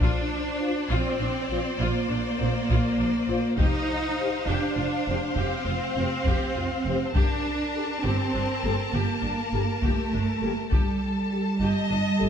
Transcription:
0.01 A#1 D4 F4 C5 D5, taiko
0.60 F4 C5
0.89 A#1 C4 F4
1.20 A#1 D4
1.49 A#1 C4 F4 C5
1.79 A#1 A#3 F4
2.09 A#1 D4
2.38 A#1 C4 F4 C5
2.69 A#1 F4, taiko
2.97 A#1 D4
3.28 A#1 C4 F4 C5
3.58 F1 D#4 G4 C5 F5, taiko
4.18 G4 C5
4.47 F1 D4 G4
4.77 F1 F4
5.07 F1 C4 G4 C5
5.36 F1 C4 G4
5.66 F1 F4
5.96 F1 C4 G4 C5
6.25 F1 G4, taiko
6.55 F1 F4
6.84 F1 C4 G4 C5
7.14 G1 D4 G4 A#4 A5, taiko
7.73 G4 A4
8.03 G1 C4 G4
8.34 G1 D4
8.63 G1 A#3 G4 A4
8.92 G1 A#3 G4
9.23 G1 D4
9.52 G1 A#3 G4 A4
9.82 G1 A3 G4, taiko
10.13 G1 D4
10.40 G1 A#3 G4 A4
10.69 G1 G3 G4 A4 A5, taiko
11.29 G4 A4
11.60 G1 G4 D#5
11.90 G1 D4
12.17 G1 A3 G4 A4

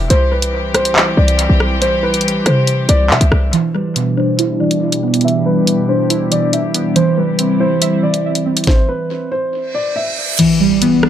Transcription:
0.10 C2 E3 G3 C4 G4 C5, closed hi-hat
0.32 B4
0.42 closed hi-hat
0.74 C5, cross-stick, closed hi-hat
0.85 closed hi-hat
0.96 clap
1.17 C2 D5
1.28 closed hi-hat
1.39 closed hi-hat
1.49 B1
1.60 cross-stick
1.82 C5, closed hi-hat
2.03 B4
2.14 closed hi-hat
2.21 closed hi-hat
2.28 closed hi-hat
2.46 C3 C5, cross-stick, closed hi-hat
2.67 closed hi-hat
2.89 C2 D5, closed hi-hat
3.10 C3 E5, clap
3.21 C2, closed hi-hat
3.32 C2, cross-stick
3.53 B2 E3 D4 G4 E5, closed hi-hat
3.74 G3 B4
3.96 B2, closed hi-hat
4.17 D4 C5
4.39 E4, closed hi-hat
4.60 E3 D5
4.71 closed hi-hat
4.92 closed hi-hat
5.03 B3
5.14 closed hi-hat
5.21 E3 E5, closed hi-hat
5.28 closed hi-hat
5.46 G3 B4
5.67 B2, closed hi-hat
5.89 D4 C5
6.10 E4, closed hi-hat
6.32 E3 D5, closed hi-hat
6.53 E5, closed hi-hat
6.74 B3, closed hi-hat
6.96 C3 E3 G3 E4 C5, closed hi-hat
7.17 G3 B4
7.39 C4, closed hi-hat
7.60 E4 C5
7.82 E5, closed hi-hat
8.03 E3 D5
8.14 closed hi-hat
8.35 closed hi-hat
8.46 C4
8.57 closed hi-hat
8.64 C5, kick, snare, closed hi-hat
8.71 closed hi-hat
8.89 B4
9.32 C5
9.53 reverse cymbal
9.75 D5
9.96 E5
10.39 E3, closed hi-hat, crash, impact
10.60 G3
10.82 B3, closed hi-hat
11.03 D4, cross-stick

